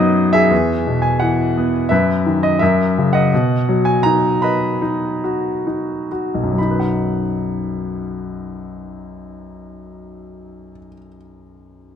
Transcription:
0.00 0.47 F#2 medium
0.00 0.47 B2 medium
0.00 0.53 F#3 soft
0.00 0.53 B3 soft
0.00 0.54 D#4 medium
0.00 0.53 D#5 medium
0.00 0.33 E5 medium
0.00 0.54 F#5 medium
0.00 0.53 G#5 medium
0.33 1.70 G#4 soft
0.33 1.06 E5 medium
0.51 1.87 E2 soft
0.87 1.88 B2 soft
1.02 1.21 G#5 medium
1.20 1.89 E3 soft
1.20 1.92 F#5 medium
1.57 1.90 B3 soft
1.89 2.59 F#2 soft
1.89 2.57 B4 soft
1.89 2.38 E5 medium
2.26 2.60 D#3 soft
2.43 2.61 D#5 medium
2.59 3.31 F#2 soft
2.59 3.28 A#4 soft
2.59 3.15 E5 medium
2.98 3.32 C#3 soft
3.13 4.42 D#5 soft
3.13 3.87 F#5 medium
3.34 6.55 B2 soft
3.69 5.20 F#3 soft
3.85 4.04 G#5 medium
4.03 4.80 D#4 soft
4.03 4.43 A#5 medium
4.42 6.08 B4 soft
4.42 6.08 D#5 soft
4.42 6.07 B5 medium
4.82 5.65 D#4 soft
5.24 6.10 F#4 soft
5.67 6.55 D#4 soft
6.12 6.57 F#4 soft
6.34 10.70 B1 soft
6.43 10.78 F#2 soft
6.53 10.88 F#3 soft
6.58 10.96 D#4 soft
6.58 10.94 B5 soft
6.71 11.06 B4 soft
6.80 11.15 F#5 soft

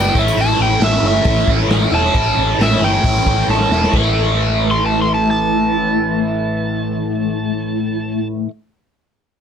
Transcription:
0.00 0.16 G3 medium
0.00 0.15 B3 medium
0.00 0.14 D4 medium
0.00 0.17 G5 medium
0.15 0.31 A1 medium
0.15 0.36 E3 medium
0.15 0.38 A3 medium
0.15 0.38 C#4 medium
0.15 0.39 E4 medium
0.15 0.34 E4 medium
0.15 0.34 A4 medium
0.15 0.34 C#5 medium
0.15 kick medium
0.15 tambourine soft
0.19 0.35 A2 medium
0.19 0.39 E5 medium
0.28 tambourine medium
0.36 0.53 A1 loud
0.36 0.80 A2 medium
0.36 0.81 E3 medium
0.36 0.81 A3 medium
0.36 0.82 C#4 medium
0.36 0.83 E4 medium
0.36 open hi-hat soft
0.41 0.61 A5 loud
0.59 0.75 A1 medium
0.59 0.83 G5 medium
0.80 0.97 A1 medium
0.80 2.13 A2 medium
0.80 1.24 E3 medium
0.80 1.07 A3 medium
0.80 1.05 C#4 medium
0.80 1.04 E4 medium
0.80 1.04 E5 loud
0.80 snare loud
0.80 open hi-hat medium
1.02 1.18 G1 medium
1.02 1.28 C#4 medium
1.02 1.29 E4 medium
1.07 1.26 A3 medium
1.07 1.49 E5 medium
1.25 1.41 A1 loud
1.25 2.14 E3 medium
1.25 1.51 A3 medium
1.25 1.51 C#4 medium
1.25 kick loud
1.25 open hi-hat soft
1.29 1.48 E4 medium
1.47 1.64 A1 medium
1.47 1.93 C#4 medium
1.47 1.91 E4 medium
1.47 kick medium
1.52 1.95 A3 medium
1.60 snare soft
1.68 1.85 A1 medium
1.68 snare loud
1.68 open hi-hat soft
1.92 2.08 E1 medium
1.92 2.15 C#4 medium
1.92 2.15 E4 medium
1.92 2.59 A5 loud
1.96 2.13 A3 medium
2.05 snare soft
2.14 2.31 A1 medium
2.14 2.58 A2 medium
2.14 2.59 E3 medium
2.14 2.60 A3 medium
2.14 2.61 C#4 medium
2.14 2.61 E4 loud
2.14 kick loud
2.14 open hi-hat soft
2.37 2.53 A1 medium
2.59 2.75 A1 medium
2.59 3.04 A2 medium
2.59 3.03 E3 medium
2.59 2.84 A3 medium
2.59 2.82 C#4 medium
2.59 2.81 E4 medium
2.59 snare loud
2.59 open hi-hat medium
2.63 2.83 E5 medium
2.80 2.97 G1 medium
2.80 3.05 C#4 medium
2.80 3.07 E4 medium
2.80 3.48 G5 medium
2.85 3.05 A3 soft
3.04 3.20 A1 loud
3.04 3.49 E3 medium
3.04 3.29 A3 medium
3.04 3.27 C#4 medium
3.04 kick loud
3.04 open hi-hat medium
3.08 3.25 E4 medium
3.26 3.42 A1 medium
3.26 3.73 C#4 medium
3.26 3.70 E4 medium
3.26 kick medium
3.30 3.74 A3 medium
3.48 3.64 A1 medium
3.48 3.93 A5 medium
3.48 snare medium
3.61 snare medium
3.70 3.86 E1 medium
3.70 3.92 E4 medium
3.70 snare medium
3.74 3.94 A3 medium
3.74 3.93 C#4 medium
3.84 snare medium
3.93 8.42 A1 medium
3.93 8.47 A2 medium
3.93 8.48 E3 medium
3.93 kick medium
3.93 crash medium
3.98 8.50 A3 medium
4.71 4.84 C6 medium
4.86 4.99 A5 medium
5.02 5.14 C6 medium
5.14 5.28 A5 medium
5.31 8.27 A5 medium

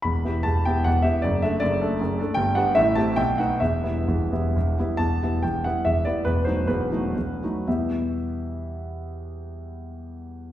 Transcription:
0.02 0.24 E1 soft
0.02 0.24 E2 soft
0.02 0.45 B5 medium
0.25 0.44 B3 soft
0.25 0.44 E4 soft
0.25 0.45 G4 soft
0.43 0.66 E1 soft
0.43 0.66 E2 soft
0.43 0.66 A5 medium
0.65 0.85 B3 soft
0.65 0.85 E4 soft
0.65 0.85 G4 soft
0.65 0.86 G5 medium
0.84 1.04 E1 medium
0.84 1.04 E2 soft
0.84 1.04 F#5 medium
1.02 1.21 B3 soft
1.02 1.22 E4 soft
1.02 1.21 G4 soft
1.02 1.22 E5 medium
1.22 1.42 F#1 soft
1.22 1.42 F#2 medium
1.22 1.42 D5 medium
1.42 1.60 A3 soft
1.42 1.61 D4 soft
1.42 1.61 A4 soft
1.42 1.62 E5 medium
1.60 1.80 F#1 medium
1.60 1.81 F#2 medium
1.60 2.37 D5 medium
1.81 1.99 A3 soft
1.81 1.98 D4 soft
1.81 1.99 A4 medium
2.00 2.19 F#1 medium
2.00 2.19 F#2 medium
2.18 2.36 A3 medium
2.18 2.36 D4 soft
2.18 2.37 A4 medium
2.34 2.56 G1 medium
2.34 2.56 G2 medium
2.34 2.55 G5 medium
2.55 2.75 B3 soft
2.55 2.75 D4 soft
2.55 2.75 G4 soft
2.55 2.76 F#5 medium
2.75 2.97 A1 medium
2.75 2.97 A2 medium
2.75 2.97 E5 medium
2.95 3.16 A3 soft
2.95 3.16 C4 soft
2.95 3.16 G4 medium
2.95 3.17 A5 medium
3.16 3.38 B1 medium
3.16 3.38 B2 medium
3.16 3.38 G5 medium
3.38 3.58 A3 soft
3.38 3.59 B3 soft
3.38 3.59 D#4 soft
3.38 3.60 F#5 medium
3.60 3.84 E1 medium
3.60 3.83 E2 soft
3.60 4.77 E5 medium
3.83 4.05 G3 soft
3.83 4.06 B3 soft
3.83 4.06 E4 soft
4.07 4.31 E1 medium
4.07 4.32 E2 medium
4.31 4.52 G3 soft
4.31 4.52 B3 soft
4.31 4.53 E4 soft
4.56 4.77 E1 medium
4.56 4.77 E2 soft
4.78 4.97 G3 soft
4.78 4.98 B3 soft
4.78 4.98 E4 soft
4.97 5.20 E1 soft
4.97 5.20 E2 medium
4.97 5.42 A5 medium
5.23 5.42 G3 soft
5.23 5.42 B3 soft
5.23 5.42 E4 soft
5.43 5.65 E1 soft
5.43 5.65 E2 soft
5.43 5.65 G5 medium
5.64 5.84 G3 soft
5.64 5.84 B3 soft
5.64 5.85 E4 soft
5.64 5.85 F#5 medium
5.85 6.05 E1 soft
5.85 6.05 E2 soft
5.85 6.05 E5 medium
6.05 6.23 G3 soft
6.05 6.23 B3 soft
6.05 6.24 E4 soft
6.05 6.25 D5 medium
6.25 6.45 E1 soft
6.25 6.45 E2 soft
6.25 6.45 B4 medium
6.45 6.66 F#3 soft
6.45 6.66 A3 soft
6.45 6.66 D#4 soft
6.45 6.67 C5 medium
6.67 6.90 E1 medium
6.67 6.91 E2 medium
6.67 7.68 B4 medium
6.92 7.14 F#3 soft
6.92 7.14 A3 soft
6.92 7.14 D#4 soft
7.15 7.42 E1 soft
7.15 7.42 E2 soft
7.43 7.66 F#3 soft
7.43 7.66 A3 soft
7.43 7.67 D#4 soft
7.67 10.52 E2 soft
7.67 10.52 B2 soft
7.67 10.52 G3 soft
7.67 10.52 B3 soft
7.67 10.52 E4 soft
7.67 10.52 G4 soft
7.67 10.52 E5 soft

